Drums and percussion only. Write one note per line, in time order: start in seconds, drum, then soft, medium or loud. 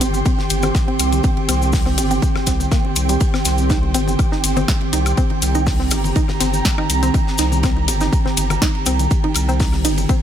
0.01 closed hi-hat medium
0.01 ride medium
0.01 low conga medium
0.01 cabasa medium
0.14 high conga soft
0.14 cabasa medium
0.25 kick loud
0.25 ride medium
0.25 cabasa soft
0.39 snare soft
0.39 high conga medium
0.50 closed hi-hat medium
0.50 ride medium
0.50 cabasa medium
0.63 ride soft
0.63 high conga medium
0.63 low conga medium
0.63 cabasa soft
0.63 high woodblock medium
0.75 kick loud
0.75 snare loud
0.75 ride medium
0.75 cabasa soft
0.88 ride soft
0.88 high conga soft
0.99 closed hi-hat medium
0.99 ride medium
0.99 cabasa medium
1.13 closed hi-hat soft
1.13 high conga medium
1.13 cabasa medium
1.24 kick loud
1.24 ride medium
1.24 cabasa soft
1.37 ride soft
1.37 high conga medium
1.49 closed hi-hat medium
1.49 ride medium
1.49 cabasa loud
1.49 high woodblock medium
1.62 high conga soft
1.62 cabasa soft
1.72 kick loud
1.72 snare loud
1.72 open hi-hat medium
1.72 cabasa soft
1.86 snare soft
1.86 high conga medium
1.98 closed hi-hat medium
1.98 ride medium
1.98 low conga medium
1.98 cabasa loud
2.11 ride soft
2.11 high conga medium
2.11 cabasa medium
2.22 kick loud
2.22 ride medium
2.22 cabasa soft
2.35 snare soft
2.35 high conga soft
2.35 low conga medium
2.35 high woodblock medium
2.46 kick medium
2.46 snare soft
2.46 closed hi-hat medium
2.46 ride medium
2.46 cabasa medium
2.60 high conga medium
2.60 cabasa soft
2.71 kick loud
2.71 snare loud
2.71 ride medium
2.71 cabasa soft
2.85 high conga medium
2.96 closed hi-hat medium
2.96 ride medium
2.96 cabasa medium
3.09 closed hi-hat soft
3.09 high conga soft
3.09 cabasa medium
3.20 kick loud
3.20 ride medium
3.20 cabasa soft
3.34 snare medium
3.34 high conga medium
3.34 high woodblock medium
3.45 snare soft
3.45 closed hi-hat medium
3.45 ride medium
3.45 cabasa medium
3.58 high conga soft
3.58 cabasa soft
3.70 kick loud
3.70 snare loud
3.70 ride medium
3.70 cabasa soft
3.83 high conga medium
3.94 closed hi-hat medium
3.94 ride medium
3.94 low conga medium
3.94 cabasa medium
4.08 high conga medium
4.08 cabasa medium
4.19 kick loud
4.19 ride medium
4.19 cabasa soft
4.19 high woodblock medium
4.32 snare soft
4.32 high conga soft
4.44 closed hi-hat medium
4.44 ride medium
4.44 cabasa medium
4.57 ride soft
4.57 high conga medium
4.57 low conga medium
4.57 cabasa soft
4.68 kick loud
4.68 snare loud
4.68 ride medium
4.68 cabasa soft
4.81 ride soft
4.81 high conga medium
4.93 closed hi-hat medium
4.93 ride medium
4.93 cabasa medium
5.06 closed hi-hat soft
5.06 high conga soft
5.06 cabasa medium
5.06 high woodblock medium
5.17 kick loud
5.17 ride medium
5.17 cabasa soft
5.30 ride soft
5.30 high conga medium
5.42 closed hi-hat medium
5.42 ride medium
5.42 cabasa medium
5.55 high conga medium
5.55 cabasa medium
5.66 kick loud
5.66 snare loud
5.66 open hi-hat medium
5.66 cabasa soft
5.80 snare soft
5.80 high conga soft
5.90 closed hi-hat medium
5.90 ride medium
5.90 low conga medium
5.90 cabasa medium
5.90 high woodblock medium
6.04 ride soft
6.04 high conga medium
6.04 cabasa soft
6.16 kick loud
6.16 ride medium
6.16 cabasa soft
6.28 snare soft
6.28 high conga medium
6.28 low conga medium
6.40 snare medium
6.40 closed hi-hat medium
6.40 ride medium
6.40 cabasa medium
6.53 high conga soft
6.53 cabasa medium
6.65 kick loud
6.65 snare medium
6.65 snare loud
6.65 ride medium
6.65 cabasa soft
6.78 high conga medium
6.78 high woodblock medium
6.90 closed hi-hat medium
6.90 ride medium
6.90 cabasa medium
7.03 closed hi-hat soft
7.03 high conga medium
7.03 cabasa soft
7.14 kick loud
7.14 ride medium
7.14 cabasa soft
7.27 snare medium
7.27 high conga soft
7.38 snare medium
7.38 closed hi-hat medium
7.38 ride medium
7.38 cabasa medium
7.52 high conga medium
7.52 cabasa medium
7.63 kick loud
7.63 snare loud
7.63 ride medium
7.63 cabasa soft
7.63 high woodblock medium
7.77 high conga medium
7.88 closed hi-hat medium
7.88 ride medium
7.88 low conga medium
7.88 cabasa medium
8.01 snare soft
8.01 high conga soft
8.01 cabasa soft
8.13 kick loud
8.13 ride medium
8.13 cabasa soft
8.26 snare soft
8.26 high conga medium
8.37 closed hi-hat medium
8.37 ride medium
8.37 cabasa medium
8.50 ride soft
8.50 high conga medium
8.50 low conga medium
8.50 cabasa medium
8.50 high woodblock medium
8.62 kick loud
8.62 snare loud
8.62 ride medium
8.62 cabasa soft
8.75 ride soft
8.75 high conga soft
8.86 closed hi-hat medium
8.86 ride medium
8.86 cabasa medium
8.99 closed hi-hat soft
8.99 high conga medium
8.99 cabasa soft
9.11 kick loud
9.11 ride medium
9.11 cabasa soft
9.24 ride soft
9.24 high conga medium
9.34 closed hi-hat medium
9.34 ride medium
9.34 cabasa medium
9.34 high woodblock medium
9.49 high conga soft
9.49 cabasa soft
9.60 kick loud
9.60 snare loud
9.60 open hi-hat medium
9.60 cabasa soft
9.73 snare soft
9.73 high conga medium
9.85 closed hi-hat medium
9.85 ride medium
9.85 low conga medium
9.85 cabasa medium
9.98 ride soft
9.98 high conga medium
9.98 cabasa soft
10.09 kick loud
10.09 ride medium
10.09 cabasa soft